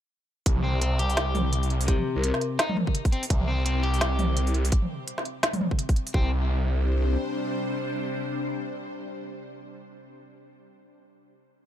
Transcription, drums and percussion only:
0.46 kick, closed hi-hat
0.56 mid tom
0.81 closed hi-hat
0.99 closed hi-hat
1.10 open hi-hat
1.17 snare, closed hi-hat
1.35 mid tom, open hi-hat
1.53 closed hi-hat
1.63 open hi-hat
1.70 closed hi-hat
1.81 open hi-hat
1.88 kick, closed hi-hat
1.98 mid tom
2.24 closed hi-hat
2.34 snare
2.41 closed hi-hat
2.59 snare, closed hi-hat
2.69 mid tom
2.77 mid tom
2.87 kick
2.95 closed hi-hat
3.05 kick, open hi-hat
3.12 closed hi-hat
3.23 open hi-hat
3.30 kick, closed hi-hat
3.41 mid tom
3.66 closed hi-hat
3.83 closed hi-hat
3.94 open hi-hat
4.01 snare, closed hi-hat
4.19 mid tom, open hi-hat
4.37 closed hi-hat
4.47 open hi-hat
4.54 closed hi-hat
4.65 open hi-hat
4.72 kick, closed hi-hat
4.82 mid tom
5.08 closed hi-hat
5.18 snare
5.25 closed hi-hat
5.43 snare, closed hi-hat
5.53 mid tom, open hi-hat
5.61 mid tom
5.71 kick
5.79 closed hi-hat
5.89 kick, open hi-hat
5.96 closed hi-hat
6.07 open hi-hat
6.14 kick

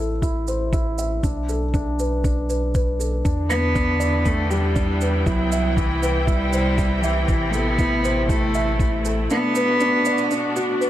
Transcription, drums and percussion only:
0.22 kick, shaker
0.47 shaker
0.73 kick, shaker
0.98 shaker
1.23 kick, shaker
1.49 shaker
1.74 kick, shaker
1.99 shaker
2.24 kick, shaker
2.50 shaker
2.75 kick, shaker
3.00 shaker
3.25 kick, shaker
3.50 shaker
3.76 kick, shaker
4.01 shaker
4.26 kick, shaker
4.51 shaker
4.76 kick, shaker
5.01 shaker
5.26 kick, shaker
5.52 shaker
5.77 kick, shaker
6.03 shaker
6.27 kick, shaker
6.53 shaker
6.78 kick, shaker
7.03 shaker
7.28 kick, shaker
7.53 shaker
7.79 kick, shaker
8.05 shaker
8.29 kick, shaker
8.54 shaker
8.79 kick, shaker
9.05 shaker
9.30 shaker
9.55 shaker
9.80 shaker
10.05 shaker
10.18 shaker
10.31 shaker
10.56 shaker
10.82 shaker

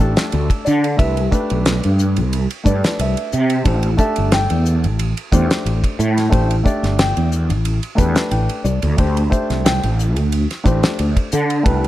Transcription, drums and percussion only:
0.17 snare, ride
0.32 ride
0.50 kick, ride
0.66 hi-hat pedal
0.84 ride
0.99 kick, ride
1.17 ride
1.32 kick, hi-hat pedal
1.50 ride
1.66 snare, ride
1.83 ride
1.99 hi-hat pedal
2.16 ride
2.33 ride
2.50 ride
2.66 kick, hi-hat pedal
2.84 snare, ride
2.99 ride
3.17 ride
3.32 hi-hat pedal
3.50 ride
3.65 kick, ride
3.83 ride
3.98 kick, hi-hat pedal
4.16 ride
4.32 snare, ride
4.50 ride
4.65 hi-hat pedal
4.84 ride
4.99 ride
5.17 ride
5.32 kick, hi-hat pedal
5.51 snare, ride
5.66 ride
5.84 kick, ride
6.00 hi-hat pedal
6.18 snare, ride
6.33 kick, ride
6.51 ride
6.66 kick, hi-hat pedal
6.84 snare, ride
6.99 snare, ride
7.17 ride
7.32 hi-hat pedal
7.50 ride
7.65 ride
7.83 ride
7.98 kick, hi-hat pedal
8.15 snare, ride
8.31 ride
8.49 ride
8.65 hi-hat pedal
8.82 ride
8.98 kick, ride
9.17 ride
9.32 kick, hi-hat pedal
9.50 snare, ride
9.66 snare, ride
9.83 ride
9.99 hi-hat pedal
10.16 ride
10.32 ride
10.51 snare, ride
10.66 kick, hi-hat pedal
10.83 snare, ride
10.99 ride
11.17 kick, ride
11.32 hi-hat pedal
11.50 ride
11.66 kick, ride
11.84 ride

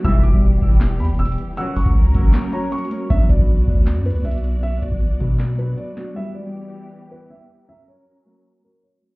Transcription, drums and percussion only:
0.04 kick, closed hi-hat
0.24 kick, closed hi-hat
0.33 kick
0.62 kick
0.81 snare, clap, closed hi-hat
1.00 closed hi-hat
1.05 closed hi-hat
1.10 closed hi-hat
1.14 closed hi-hat
1.19 closed hi-hat
1.25 closed hi-hat
1.32 closed hi-hat
1.38 closed hi-hat
1.57 closed hi-hat
1.76 closed hi-hat, open hi-hat
1.81 closed hi-hat
1.86 kick, closed hi-hat
1.91 closed hi-hat
2.15 kick, closed hi-hat
2.34 snare, clap, closed hi-hat
2.53 closed hi-hat
2.72 closed hi-hat
2.78 closed hi-hat
2.85 closed hi-hat
2.91 closed hi-hat
3.10 kick, closed hi-hat
3.29 kick, closed hi-hat
3.39 kick
3.68 kick
3.87 snare, clap, closed hi-hat
4.06 closed hi-hat
4.11 closed hi-hat
4.15 closed hi-hat
4.20 closed hi-hat
4.25 closed hi-hat
4.31 closed hi-hat
4.38 closed hi-hat
4.44 closed hi-hat
4.63 closed hi-hat
4.82 closed hi-hat
4.92 kick
5.20 kick, closed hi-hat
5.39 snare, clap, closed hi-hat
5.59 closed hi-hat
5.78 closed hi-hat
5.97 snare, closed hi-hat

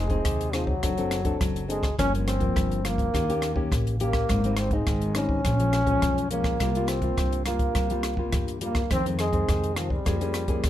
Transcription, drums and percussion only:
0.10 kick, closed hi-hat
0.25 kick, cross-stick, closed hi-hat
0.41 closed hi-hat
0.53 cross-stick, closed hi-hat
0.67 kick
0.83 kick, cross-stick, closed hi-hat
0.98 closed hi-hat
1.11 cross-stick, closed hi-hat
1.25 kick, closed hi-hat
1.41 kick, cross-stick, closed hi-hat
1.56 closed hi-hat
1.70 closed hi-hat
1.83 kick, cross-stick, closed hi-hat
1.99 kick, cross-stick, closed hi-hat
2.15 closed hi-hat
2.28 cross-stick, closed hi-hat
2.40 kick, closed hi-hat
2.56 kick, cross-stick, closed hi-hat
2.72 closed hi-hat
2.85 cross-stick, closed hi-hat
2.98 kick, closed hi-hat
3.14 kick, cross-stick, closed hi-hat
3.30 closed hi-hat
3.42 cross-stick, closed hi-hat
3.56 kick
3.72 kick, cross-stick, closed hi-hat
3.87 closed hi-hat
4.00 closed hi-hat
4.13 kick, cross-stick, closed hi-hat
4.29 kick, cross-stick, closed hi-hat
4.44 closed hi-hat
4.57 cross-stick, closed hi-hat
4.71 kick, closed hi-hat
4.87 kick, cross-stick, closed hi-hat
5.02 closed hi-hat
5.15 cross-stick, closed hi-hat
5.29 kick
5.45 kick, cross-stick, closed hi-hat
5.60 closed hi-hat
5.73 cross-stick, closed hi-hat
5.87 kick, closed hi-hat
6.02 kick, cross-stick, closed hi-hat
6.18 closed hi-hat
6.31 closed hi-hat
6.44 kick, cross-stick, closed hi-hat
6.60 kick, cross-stick, closed hi-hat
6.75 closed hi-hat
6.88 cross-stick, closed hi-hat
7.02 kick, closed hi-hat
7.18 kick, cross-stick, closed hi-hat
7.33 closed hi-hat
7.46 cross-stick, closed hi-hat
7.59 kick, closed hi-hat
7.75 kick, cross-stick, closed hi-hat
7.90 closed hi-hat
8.03 cross-stick, closed hi-hat
8.17 kick
8.32 kick, cross-stick, closed hi-hat
8.48 closed hi-hat
8.61 closed hi-hat
8.75 kick, cross-stick, closed hi-hat
8.91 kick, cross-stick, closed hi-hat
9.06 closed hi-hat
9.19 cross-stick, closed hi-hat
9.33 kick, closed hi-hat
9.48 kick, cross-stick, closed hi-hat
9.64 closed hi-hat
9.76 cross-stick, closed hi-hat
9.90 kick
10.06 kick, cross-stick, closed hi-hat
10.21 closed hi-hat
10.34 cross-stick, closed hi-hat
10.48 kick, closed hi-hat
10.64 kick, cross-stick, closed hi-hat

